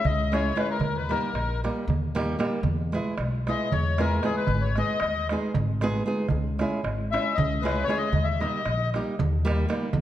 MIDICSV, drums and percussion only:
0, 0, Header, 1, 2, 480
1, 0, Start_track
1, 0, Tempo, 521286
1, 743, Time_signature, 7, 3, 24, 8
1, 9217, End_track
2, 0, Start_track
2, 0, Title_t, "Darbuka"
2, 48, Note_on_c, 9, 64, 81
2, 141, Note_off_c, 9, 64, 0
2, 177, Note_on_c, 9, 63, 24
2, 269, Note_off_c, 9, 63, 0
2, 303, Note_on_c, 9, 63, 69
2, 395, Note_off_c, 9, 63, 0
2, 527, Note_on_c, 9, 63, 74
2, 619, Note_off_c, 9, 63, 0
2, 743, Note_on_c, 9, 64, 78
2, 835, Note_off_c, 9, 64, 0
2, 887, Note_on_c, 9, 63, 25
2, 979, Note_off_c, 9, 63, 0
2, 1019, Note_on_c, 9, 63, 50
2, 1111, Note_off_c, 9, 63, 0
2, 1243, Note_on_c, 9, 63, 59
2, 1336, Note_off_c, 9, 63, 0
2, 1382, Note_on_c, 9, 63, 20
2, 1474, Note_off_c, 9, 63, 0
2, 1515, Note_on_c, 9, 63, 58
2, 1607, Note_off_c, 9, 63, 0
2, 1630, Note_on_c, 9, 63, 22
2, 1722, Note_off_c, 9, 63, 0
2, 1747, Note_on_c, 9, 64, 79
2, 1839, Note_off_c, 9, 64, 0
2, 1871, Note_on_c, 9, 63, 22
2, 1963, Note_off_c, 9, 63, 0
2, 1990, Note_on_c, 9, 63, 69
2, 2082, Note_off_c, 9, 63, 0
2, 2210, Note_on_c, 9, 63, 73
2, 2303, Note_off_c, 9, 63, 0
2, 2428, Note_on_c, 9, 64, 77
2, 2520, Note_off_c, 9, 64, 0
2, 2564, Note_on_c, 9, 63, 28
2, 2656, Note_off_c, 9, 63, 0
2, 2699, Note_on_c, 9, 63, 49
2, 2791, Note_off_c, 9, 63, 0
2, 2924, Note_on_c, 9, 63, 70
2, 3016, Note_off_c, 9, 63, 0
2, 3059, Note_on_c, 9, 63, 23
2, 3151, Note_off_c, 9, 63, 0
2, 3194, Note_on_c, 9, 63, 61
2, 3286, Note_off_c, 9, 63, 0
2, 3311, Note_on_c, 9, 63, 25
2, 3403, Note_off_c, 9, 63, 0
2, 3422, Note_on_c, 9, 64, 70
2, 3514, Note_off_c, 9, 64, 0
2, 3549, Note_on_c, 9, 63, 21
2, 3641, Note_off_c, 9, 63, 0
2, 3667, Note_on_c, 9, 63, 65
2, 3759, Note_off_c, 9, 63, 0
2, 3894, Note_on_c, 9, 63, 68
2, 3986, Note_off_c, 9, 63, 0
2, 4115, Note_on_c, 9, 64, 70
2, 4207, Note_off_c, 9, 64, 0
2, 4252, Note_on_c, 9, 63, 26
2, 4345, Note_off_c, 9, 63, 0
2, 4378, Note_on_c, 9, 63, 50
2, 4470, Note_off_c, 9, 63, 0
2, 4601, Note_on_c, 9, 63, 70
2, 4693, Note_off_c, 9, 63, 0
2, 4874, Note_on_c, 9, 63, 70
2, 4966, Note_off_c, 9, 63, 0
2, 5104, Note_on_c, 9, 64, 82
2, 5196, Note_off_c, 9, 64, 0
2, 5227, Note_on_c, 9, 63, 23
2, 5319, Note_off_c, 9, 63, 0
2, 5352, Note_on_c, 9, 63, 66
2, 5444, Note_off_c, 9, 63, 0
2, 5787, Note_on_c, 9, 64, 87
2, 5879, Note_off_c, 9, 64, 0
2, 5931, Note_on_c, 9, 63, 25
2, 6023, Note_off_c, 9, 63, 0
2, 6070, Note_on_c, 9, 63, 61
2, 6162, Note_off_c, 9, 63, 0
2, 6302, Note_on_c, 9, 63, 70
2, 6394, Note_off_c, 9, 63, 0
2, 6441, Note_on_c, 9, 63, 21
2, 6533, Note_off_c, 9, 63, 0
2, 6574, Note_on_c, 9, 63, 70
2, 6666, Note_off_c, 9, 63, 0
2, 6695, Note_on_c, 9, 63, 28
2, 6787, Note_off_c, 9, 63, 0
2, 6805, Note_on_c, 9, 64, 86
2, 6897, Note_off_c, 9, 64, 0
2, 6933, Note_on_c, 9, 63, 28
2, 7025, Note_off_c, 9, 63, 0
2, 7055, Note_on_c, 9, 63, 66
2, 7147, Note_off_c, 9, 63, 0
2, 7271, Note_on_c, 9, 63, 61
2, 7363, Note_off_c, 9, 63, 0
2, 7486, Note_on_c, 9, 64, 79
2, 7578, Note_off_c, 9, 64, 0
2, 7623, Note_on_c, 9, 63, 25
2, 7715, Note_off_c, 9, 63, 0
2, 7746, Note_on_c, 9, 63, 52
2, 7838, Note_off_c, 9, 63, 0
2, 7969, Note_on_c, 9, 63, 64
2, 8061, Note_off_c, 9, 63, 0
2, 8109, Note_on_c, 9, 63, 20
2, 8201, Note_off_c, 9, 63, 0
2, 8231, Note_on_c, 9, 63, 57
2, 8323, Note_off_c, 9, 63, 0
2, 8351, Note_on_c, 9, 63, 27
2, 8443, Note_off_c, 9, 63, 0
2, 8464, Note_on_c, 9, 64, 88
2, 8556, Note_off_c, 9, 64, 0
2, 8592, Note_on_c, 9, 63, 27
2, 8685, Note_off_c, 9, 63, 0
2, 8722, Note_on_c, 9, 63, 77
2, 8814, Note_off_c, 9, 63, 0
2, 8930, Note_on_c, 9, 63, 72
2, 9022, Note_off_c, 9, 63, 0
2, 9144, Note_on_c, 9, 64, 96
2, 9217, Note_off_c, 9, 64, 0
2, 9217, End_track
0, 0, End_of_file